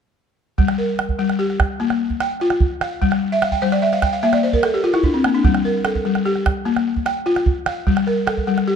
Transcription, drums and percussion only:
0, 0, Header, 1, 2, 480
1, 0, Start_track
1, 0, Tempo, 404858
1, 697, Time_signature, 12, 3, 24, 8
1, 10382, End_track
2, 0, Start_track
2, 0, Title_t, "Calabash"
2, 691, Note_on_c, 9, 36, 59
2, 810, Note_off_c, 9, 36, 0
2, 811, Note_on_c, 9, 38, 48
2, 930, Note_off_c, 9, 38, 0
2, 1173, Note_on_c, 9, 38, 53
2, 1291, Note_off_c, 9, 38, 0
2, 1291, Note_on_c, 9, 36, 40
2, 1410, Note_off_c, 9, 36, 0
2, 1411, Note_on_c, 9, 38, 18
2, 1530, Note_off_c, 9, 38, 0
2, 1536, Note_on_c, 9, 38, 43
2, 1654, Note_off_c, 9, 38, 0
2, 1655, Note_on_c, 9, 38, 18
2, 1773, Note_off_c, 9, 38, 0
2, 1777, Note_on_c, 9, 38, 18
2, 1894, Note_off_c, 9, 38, 0
2, 1894, Note_on_c, 9, 36, 58
2, 1894, Note_on_c, 9, 38, 61
2, 2012, Note_off_c, 9, 36, 0
2, 2012, Note_off_c, 9, 38, 0
2, 2133, Note_on_c, 9, 38, 18
2, 2252, Note_off_c, 9, 38, 0
2, 2256, Note_on_c, 9, 38, 44
2, 2375, Note_off_c, 9, 38, 0
2, 2491, Note_on_c, 9, 36, 46
2, 2609, Note_off_c, 9, 36, 0
2, 2614, Note_on_c, 9, 38, 57
2, 2733, Note_off_c, 9, 38, 0
2, 2847, Note_on_c, 9, 38, 17
2, 2966, Note_off_c, 9, 38, 0
2, 2968, Note_on_c, 9, 38, 46
2, 3087, Note_off_c, 9, 38, 0
2, 3088, Note_on_c, 9, 36, 54
2, 3206, Note_off_c, 9, 36, 0
2, 3335, Note_on_c, 9, 38, 52
2, 3454, Note_off_c, 9, 38, 0
2, 3580, Note_on_c, 9, 36, 57
2, 3698, Note_off_c, 9, 36, 0
2, 3698, Note_on_c, 9, 38, 47
2, 3817, Note_off_c, 9, 38, 0
2, 4057, Note_on_c, 9, 38, 60
2, 4170, Note_on_c, 9, 36, 39
2, 4175, Note_off_c, 9, 38, 0
2, 4288, Note_off_c, 9, 36, 0
2, 4298, Note_on_c, 9, 38, 17
2, 4413, Note_off_c, 9, 38, 0
2, 4413, Note_on_c, 9, 38, 45
2, 4531, Note_off_c, 9, 38, 0
2, 4541, Note_on_c, 9, 38, 17
2, 4656, Note_off_c, 9, 38, 0
2, 4656, Note_on_c, 9, 38, 20
2, 4769, Note_off_c, 9, 38, 0
2, 4769, Note_on_c, 9, 36, 55
2, 4769, Note_on_c, 9, 38, 58
2, 4888, Note_off_c, 9, 36, 0
2, 4888, Note_off_c, 9, 38, 0
2, 5017, Note_on_c, 9, 38, 17
2, 5132, Note_off_c, 9, 38, 0
2, 5132, Note_on_c, 9, 38, 45
2, 5250, Note_off_c, 9, 38, 0
2, 5373, Note_on_c, 9, 36, 49
2, 5490, Note_on_c, 9, 38, 60
2, 5491, Note_off_c, 9, 36, 0
2, 5609, Note_off_c, 9, 38, 0
2, 5737, Note_on_c, 9, 38, 21
2, 5854, Note_off_c, 9, 38, 0
2, 5854, Note_on_c, 9, 38, 45
2, 5967, Note_on_c, 9, 36, 60
2, 5972, Note_off_c, 9, 38, 0
2, 6085, Note_off_c, 9, 36, 0
2, 6217, Note_on_c, 9, 38, 60
2, 6335, Note_off_c, 9, 38, 0
2, 6455, Note_on_c, 9, 36, 66
2, 6573, Note_off_c, 9, 36, 0
2, 6574, Note_on_c, 9, 38, 54
2, 6693, Note_off_c, 9, 38, 0
2, 6931, Note_on_c, 9, 38, 62
2, 7049, Note_off_c, 9, 38, 0
2, 7057, Note_on_c, 9, 36, 46
2, 7175, Note_off_c, 9, 36, 0
2, 7175, Note_on_c, 9, 38, 19
2, 7294, Note_off_c, 9, 38, 0
2, 7294, Note_on_c, 9, 38, 46
2, 7413, Note_off_c, 9, 38, 0
2, 7418, Note_on_c, 9, 38, 19
2, 7535, Note_off_c, 9, 38, 0
2, 7535, Note_on_c, 9, 38, 20
2, 7653, Note_off_c, 9, 38, 0
2, 7660, Note_on_c, 9, 36, 68
2, 7660, Note_on_c, 9, 38, 61
2, 7778, Note_off_c, 9, 36, 0
2, 7778, Note_off_c, 9, 38, 0
2, 7899, Note_on_c, 9, 38, 18
2, 8018, Note_off_c, 9, 38, 0
2, 8021, Note_on_c, 9, 38, 45
2, 8140, Note_off_c, 9, 38, 0
2, 8256, Note_on_c, 9, 36, 50
2, 8372, Note_on_c, 9, 38, 54
2, 8375, Note_off_c, 9, 36, 0
2, 8490, Note_off_c, 9, 38, 0
2, 8614, Note_on_c, 9, 38, 17
2, 8731, Note_off_c, 9, 38, 0
2, 8731, Note_on_c, 9, 38, 44
2, 8847, Note_on_c, 9, 36, 55
2, 8849, Note_off_c, 9, 38, 0
2, 8965, Note_off_c, 9, 36, 0
2, 9085, Note_on_c, 9, 38, 53
2, 9204, Note_off_c, 9, 38, 0
2, 9328, Note_on_c, 9, 36, 62
2, 9447, Note_off_c, 9, 36, 0
2, 9448, Note_on_c, 9, 38, 48
2, 9566, Note_off_c, 9, 38, 0
2, 9573, Note_on_c, 9, 38, 19
2, 9692, Note_off_c, 9, 38, 0
2, 9810, Note_on_c, 9, 38, 58
2, 9929, Note_off_c, 9, 38, 0
2, 9931, Note_on_c, 9, 36, 41
2, 10046, Note_on_c, 9, 38, 17
2, 10049, Note_off_c, 9, 36, 0
2, 10165, Note_off_c, 9, 38, 0
2, 10169, Note_on_c, 9, 38, 42
2, 10287, Note_off_c, 9, 38, 0
2, 10382, End_track
0, 0, End_of_file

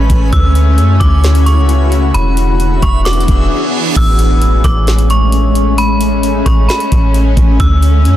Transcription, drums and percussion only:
0, 0, Header, 1, 2, 480
1, 0, Start_track
1, 0, Key_signature, 3, "major"
1, 0, Tempo, 454545
1, 345, Time_signature, 4, 2, 24, 8
1, 8624, End_track
2, 0, Start_track
2, 0, Title_t, "Drums"
2, 103, Note_on_c, 9, 36, 105
2, 105, Note_on_c, 9, 42, 73
2, 209, Note_off_c, 9, 36, 0
2, 211, Note_off_c, 9, 42, 0
2, 344, Note_on_c, 9, 36, 116
2, 344, Note_on_c, 9, 42, 77
2, 450, Note_off_c, 9, 36, 0
2, 450, Note_off_c, 9, 42, 0
2, 584, Note_on_c, 9, 42, 88
2, 689, Note_off_c, 9, 42, 0
2, 823, Note_on_c, 9, 42, 76
2, 929, Note_off_c, 9, 42, 0
2, 1063, Note_on_c, 9, 36, 85
2, 1065, Note_on_c, 9, 42, 68
2, 1168, Note_off_c, 9, 36, 0
2, 1170, Note_off_c, 9, 42, 0
2, 1306, Note_on_c, 9, 42, 47
2, 1314, Note_on_c, 9, 38, 103
2, 1411, Note_off_c, 9, 42, 0
2, 1419, Note_off_c, 9, 38, 0
2, 1425, Note_on_c, 9, 42, 75
2, 1531, Note_off_c, 9, 42, 0
2, 1547, Note_on_c, 9, 42, 73
2, 1653, Note_off_c, 9, 42, 0
2, 1784, Note_on_c, 9, 42, 71
2, 1890, Note_off_c, 9, 42, 0
2, 2026, Note_on_c, 9, 42, 73
2, 2132, Note_off_c, 9, 42, 0
2, 2265, Note_on_c, 9, 42, 76
2, 2371, Note_off_c, 9, 42, 0
2, 2503, Note_on_c, 9, 42, 87
2, 2609, Note_off_c, 9, 42, 0
2, 2744, Note_on_c, 9, 42, 78
2, 2849, Note_off_c, 9, 42, 0
2, 2982, Note_on_c, 9, 36, 86
2, 2984, Note_on_c, 9, 42, 66
2, 3088, Note_off_c, 9, 36, 0
2, 3090, Note_off_c, 9, 42, 0
2, 3225, Note_on_c, 9, 42, 46
2, 3233, Note_on_c, 9, 38, 104
2, 3304, Note_off_c, 9, 42, 0
2, 3304, Note_on_c, 9, 42, 62
2, 3338, Note_off_c, 9, 38, 0
2, 3384, Note_off_c, 9, 42, 0
2, 3384, Note_on_c, 9, 42, 76
2, 3466, Note_off_c, 9, 42, 0
2, 3466, Note_on_c, 9, 42, 73
2, 3467, Note_on_c, 9, 36, 86
2, 3571, Note_off_c, 9, 42, 0
2, 3572, Note_off_c, 9, 36, 0
2, 4184, Note_on_c, 9, 36, 113
2, 4185, Note_on_c, 9, 42, 82
2, 4185, Note_on_c, 9, 49, 104
2, 4290, Note_off_c, 9, 36, 0
2, 4290, Note_off_c, 9, 42, 0
2, 4290, Note_off_c, 9, 49, 0
2, 4423, Note_on_c, 9, 42, 90
2, 4528, Note_off_c, 9, 42, 0
2, 4663, Note_on_c, 9, 42, 80
2, 4768, Note_off_c, 9, 42, 0
2, 4902, Note_on_c, 9, 36, 86
2, 4904, Note_on_c, 9, 42, 72
2, 4913, Note_on_c, 9, 37, 93
2, 5008, Note_off_c, 9, 36, 0
2, 5010, Note_off_c, 9, 42, 0
2, 5019, Note_off_c, 9, 37, 0
2, 5145, Note_on_c, 9, 42, 46
2, 5153, Note_on_c, 9, 38, 107
2, 5250, Note_off_c, 9, 42, 0
2, 5258, Note_off_c, 9, 38, 0
2, 5264, Note_on_c, 9, 42, 76
2, 5370, Note_off_c, 9, 42, 0
2, 5386, Note_on_c, 9, 42, 76
2, 5491, Note_off_c, 9, 42, 0
2, 5622, Note_on_c, 9, 42, 74
2, 5728, Note_off_c, 9, 42, 0
2, 5865, Note_on_c, 9, 42, 74
2, 5971, Note_off_c, 9, 42, 0
2, 6104, Note_on_c, 9, 42, 78
2, 6210, Note_off_c, 9, 42, 0
2, 6342, Note_on_c, 9, 42, 91
2, 6448, Note_off_c, 9, 42, 0
2, 6582, Note_on_c, 9, 42, 80
2, 6688, Note_off_c, 9, 42, 0
2, 6822, Note_on_c, 9, 36, 89
2, 6824, Note_on_c, 9, 42, 72
2, 6833, Note_on_c, 9, 37, 93
2, 6928, Note_off_c, 9, 36, 0
2, 6930, Note_off_c, 9, 42, 0
2, 6939, Note_off_c, 9, 37, 0
2, 7066, Note_on_c, 9, 42, 46
2, 7074, Note_on_c, 9, 38, 107
2, 7171, Note_off_c, 9, 42, 0
2, 7180, Note_off_c, 9, 38, 0
2, 7184, Note_on_c, 9, 42, 75
2, 7290, Note_off_c, 9, 42, 0
2, 7306, Note_on_c, 9, 42, 76
2, 7307, Note_on_c, 9, 36, 93
2, 7412, Note_off_c, 9, 36, 0
2, 7412, Note_off_c, 9, 42, 0
2, 7544, Note_on_c, 9, 42, 73
2, 7649, Note_off_c, 9, 42, 0
2, 7783, Note_on_c, 9, 36, 107
2, 7784, Note_on_c, 9, 42, 76
2, 7889, Note_off_c, 9, 36, 0
2, 7890, Note_off_c, 9, 42, 0
2, 8024, Note_on_c, 9, 36, 119
2, 8024, Note_on_c, 9, 42, 80
2, 8130, Note_off_c, 9, 36, 0
2, 8130, Note_off_c, 9, 42, 0
2, 8263, Note_on_c, 9, 42, 92
2, 8369, Note_off_c, 9, 42, 0
2, 8503, Note_on_c, 9, 42, 81
2, 8609, Note_off_c, 9, 42, 0
2, 8624, End_track
0, 0, End_of_file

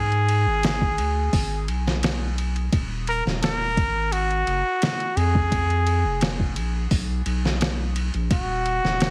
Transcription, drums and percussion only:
0, 0, Header, 1, 2, 480
1, 0, Start_track
1, 0, Key_signature, -6, "minor"
1, 0, Tempo, 697674
1, 1874, Time_signature, 4, 2, 24, 8
1, 6262, End_track
2, 0, Start_track
2, 0, Title_t, "Drums"
2, 82, Note_on_c, 9, 51, 39
2, 151, Note_off_c, 9, 51, 0
2, 196, Note_on_c, 9, 51, 64
2, 265, Note_off_c, 9, 51, 0
2, 436, Note_on_c, 9, 51, 85
2, 444, Note_on_c, 9, 38, 116
2, 505, Note_off_c, 9, 51, 0
2, 513, Note_off_c, 9, 38, 0
2, 559, Note_on_c, 9, 36, 97
2, 628, Note_off_c, 9, 36, 0
2, 676, Note_on_c, 9, 51, 66
2, 745, Note_off_c, 9, 51, 0
2, 914, Note_on_c, 9, 36, 96
2, 914, Note_on_c, 9, 46, 73
2, 983, Note_off_c, 9, 36, 0
2, 983, Note_off_c, 9, 46, 0
2, 1158, Note_on_c, 9, 51, 63
2, 1226, Note_off_c, 9, 51, 0
2, 1290, Note_on_c, 9, 38, 45
2, 1359, Note_off_c, 9, 38, 0
2, 1397, Note_on_c, 9, 51, 85
2, 1405, Note_on_c, 9, 38, 102
2, 1465, Note_off_c, 9, 51, 0
2, 1474, Note_off_c, 9, 38, 0
2, 1638, Note_on_c, 9, 51, 64
2, 1707, Note_off_c, 9, 51, 0
2, 1761, Note_on_c, 9, 51, 43
2, 1830, Note_off_c, 9, 51, 0
2, 1875, Note_on_c, 9, 36, 95
2, 1875, Note_on_c, 9, 51, 80
2, 1943, Note_off_c, 9, 36, 0
2, 1944, Note_off_c, 9, 51, 0
2, 2115, Note_on_c, 9, 51, 63
2, 2184, Note_off_c, 9, 51, 0
2, 2250, Note_on_c, 9, 38, 36
2, 2319, Note_off_c, 9, 38, 0
2, 2357, Note_on_c, 9, 51, 86
2, 2365, Note_on_c, 9, 38, 108
2, 2425, Note_off_c, 9, 51, 0
2, 2434, Note_off_c, 9, 38, 0
2, 2595, Note_on_c, 9, 36, 97
2, 2596, Note_on_c, 9, 51, 67
2, 2664, Note_off_c, 9, 36, 0
2, 2665, Note_off_c, 9, 51, 0
2, 2837, Note_on_c, 9, 51, 86
2, 2906, Note_off_c, 9, 51, 0
2, 2963, Note_on_c, 9, 51, 39
2, 3031, Note_off_c, 9, 51, 0
2, 3077, Note_on_c, 9, 51, 61
2, 3146, Note_off_c, 9, 51, 0
2, 3315, Note_on_c, 9, 51, 87
2, 3324, Note_on_c, 9, 38, 101
2, 3384, Note_off_c, 9, 51, 0
2, 3392, Note_off_c, 9, 38, 0
2, 3442, Note_on_c, 9, 51, 41
2, 3510, Note_off_c, 9, 51, 0
2, 3557, Note_on_c, 9, 51, 64
2, 3626, Note_off_c, 9, 51, 0
2, 3680, Note_on_c, 9, 36, 92
2, 3749, Note_off_c, 9, 36, 0
2, 3796, Note_on_c, 9, 36, 95
2, 3797, Note_on_c, 9, 51, 74
2, 3864, Note_off_c, 9, 36, 0
2, 3866, Note_off_c, 9, 51, 0
2, 3923, Note_on_c, 9, 51, 39
2, 3992, Note_off_c, 9, 51, 0
2, 4036, Note_on_c, 9, 51, 65
2, 4105, Note_off_c, 9, 51, 0
2, 4274, Note_on_c, 9, 51, 83
2, 4282, Note_on_c, 9, 38, 108
2, 4343, Note_off_c, 9, 51, 0
2, 4351, Note_off_c, 9, 38, 0
2, 4399, Note_on_c, 9, 36, 94
2, 4468, Note_off_c, 9, 36, 0
2, 4514, Note_on_c, 9, 51, 72
2, 4583, Note_off_c, 9, 51, 0
2, 4754, Note_on_c, 9, 36, 94
2, 4754, Note_on_c, 9, 46, 72
2, 4822, Note_off_c, 9, 46, 0
2, 4823, Note_off_c, 9, 36, 0
2, 4994, Note_on_c, 9, 51, 65
2, 5063, Note_off_c, 9, 51, 0
2, 5129, Note_on_c, 9, 38, 42
2, 5197, Note_off_c, 9, 38, 0
2, 5235, Note_on_c, 9, 51, 80
2, 5243, Note_on_c, 9, 38, 114
2, 5304, Note_off_c, 9, 51, 0
2, 5312, Note_off_c, 9, 38, 0
2, 5475, Note_on_c, 9, 51, 65
2, 5544, Note_off_c, 9, 51, 0
2, 5600, Note_on_c, 9, 51, 42
2, 5668, Note_off_c, 9, 51, 0
2, 5714, Note_on_c, 9, 36, 99
2, 5715, Note_on_c, 9, 51, 81
2, 5783, Note_off_c, 9, 36, 0
2, 5783, Note_off_c, 9, 51, 0
2, 5955, Note_on_c, 9, 51, 58
2, 6024, Note_off_c, 9, 51, 0
2, 6087, Note_on_c, 9, 38, 34
2, 6156, Note_off_c, 9, 38, 0
2, 6195, Note_on_c, 9, 51, 81
2, 6203, Note_on_c, 9, 38, 110
2, 6262, Note_off_c, 9, 38, 0
2, 6262, Note_off_c, 9, 51, 0
2, 6262, End_track
0, 0, End_of_file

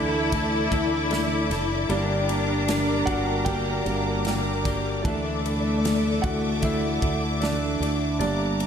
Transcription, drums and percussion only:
0, 0, Header, 1, 2, 480
1, 0, Start_track
1, 0, Tempo, 788436
1, 1152, Time_signature, 4, 2, 24, 8
1, 5276, End_track
2, 0, Start_track
2, 0, Title_t, "Drums"
2, 196, Note_on_c, 9, 51, 87
2, 198, Note_on_c, 9, 36, 80
2, 257, Note_off_c, 9, 51, 0
2, 259, Note_off_c, 9, 36, 0
2, 437, Note_on_c, 9, 36, 97
2, 441, Note_on_c, 9, 51, 56
2, 498, Note_off_c, 9, 36, 0
2, 502, Note_off_c, 9, 51, 0
2, 674, Note_on_c, 9, 51, 61
2, 687, Note_on_c, 9, 38, 96
2, 735, Note_off_c, 9, 51, 0
2, 748, Note_off_c, 9, 38, 0
2, 920, Note_on_c, 9, 51, 68
2, 922, Note_on_c, 9, 38, 36
2, 980, Note_off_c, 9, 51, 0
2, 983, Note_off_c, 9, 38, 0
2, 1154, Note_on_c, 9, 51, 67
2, 1215, Note_off_c, 9, 51, 0
2, 1395, Note_on_c, 9, 51, 68
2, 1455, Note_off_c, 9, 51, 0
2, 1634, Note_on_c, 9, 51, 85
2, 1638, Note_on_c, 9, 38, 115
2, 1695, Note_off_c, 9, 51, 0
2, 1699, Note_off_c, 9, 38, 0
2, 1870, Note_on_c, 9, 36, 85
2, 1871, Note_on_c, 9, 51, 59
2, 1931, Note_off_c, 9, 36, 0
2, 1932, Note_off_c, 9, 51, 0
2, 2106, Note_on_c, 9, 51, 80
2, 2107, Note_on_c, 9, 36, 82
2, 2166, Note_off_c, 9, 51, 0
2, 2168, Note_off_c, 9, 36, 0
2, 2351, Note_on_c, 9, 51, 55
2, 2412, Note_off_c, 9, 51, 0
2, 2586, Note_on_c, 9, 51, 63
2, 2599, Note_on_c, 9, 38, 98
2, 2647, Note_off_c, 9, 51, 0
2, 2660, Note_off_c, 9, 38, 0
2, 2833, Note_on_c, 9, 36, 89
2, 2834, Note_on_c, 9, 51, 65
2, 2837, Note_on_c, 9, 38, 36
2, 2894, Note_off_c, 9, 36, 0
2, 2895, Note_off_c, 9, 51, 0
2, 2898, Note_off_c, 9, 38, 0
2, 3074, Note_on_c, 9, 36, 105
2, 3076, Note_on_c, 9, 51, 66
2, 3135, Note_off_c, 9, 36, 0
2, 3137, Note_off_c, 9, 51, 0
2, 3321, Note_on_c, 9, 51, 69
2, 3382, Note_off_c, 9, 51, 0
2, 3562, Note_on_c, 9, 51, 88
2, 3566, Note_on_c, 9, 38, 116
2, 3623, Note_off_c, 9, 51, 0
2, 3627, Note_off_c, 9, 38, 0
2, 3796, Note_on_c, 9, 51, 58
2, 3798, Note_on_c, 9, 36, 92
2, 3857, Note_off_c, 9, 51, 0
2, 3859, Note_off_c, 9, 36, 0
2, 4033, Note_on_c, 9, 51, 80
2, 4036, Note_on_c, 9, 36, 87
2, 4094, Note_off_c, 9, 51, 0
2, 4097, Note_off_c, 9, 36, 0
2, 4276, Note_on_c, 9, 36, 99
2, 4280, Note_on_c, 9, 51, 52
2, 4337, Note_off_c, 9, 36, 0
2, 4341, Note_off_c, 9, 51, 0
2, 4514, Note_on_c, 9, 51, 62
2, 4527, Note_on_c, 9, 38, 99
2, 4575, Note_off_c, 9, 51, 0
2, 4588, Note_off_c, 9, 38, 0
2, 4764, Note_on_c, 9, 51, 70
2, 4825, Note_off_c, 9, 51, 0
2, 4995, Note_on_c, 9, 51, 71
2, 5056, Note_off_c, 9, 51, 0
2, 5237, Note_on_c, 9, 51, 70
2, 5276, Note_off_c, 9, 51, 0
2, 5276, End_track
0, 0, End_of_file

